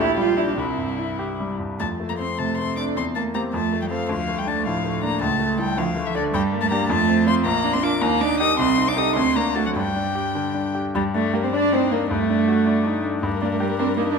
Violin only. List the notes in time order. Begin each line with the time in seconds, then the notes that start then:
0.00 G4
0.58 E4
1.80 A5
2.09 A#5
2.19 C6
2.38 A5
2.58 C6
2.77 D6
2.97 C6
3.15 A5
3.34 A#5
3.53 A5
3.82 G5
3.90 F5
4.10 F5
4.39 G5
4.48 A5
4.67 F5
5.04 A#5
5.22 A5
5.61 G5
5.78 F5
6.06 E5
6.16 D5
6.34 G5
6.61 A5
6.72 A#5
6.89 A5
7.27 C6
7.45 A#5
7.73 C6
7.83 D6
8.01 A#5
8.21 D6
8.41 D#6
8.60 C6
8.88 D6
8.98 D#6
9.16 C6
9.36 A#5
9.55 A5
9.66 F#5
9.77 G5
10.95 G3
11.16 A3
11.35 A#3
11.44 C4
11.54 D4
11.72 C4
11.91 A#3
12.11 A3
13.23 A#4